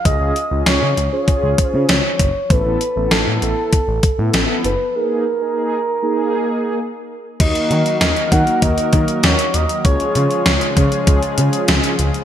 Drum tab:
CC |----------------|----------------|----------------|x---------------|
HH |x-x-x-x-x-x-x-x-|x-x-x-x-x-x-x-x-|----------------|xxxxxxxxxxxxxxxx|
SD |----o-------o---|----o-------o---|----------------|----o-------o---|
BD |o-------o-o---o-|o-------o-o-----|----------------|o-----o-o-o-----|

CC |----------------|
HH |xxxxxxxxxxxxxxxx|
SD |----o-------o---|
BD |o-----o-o-------|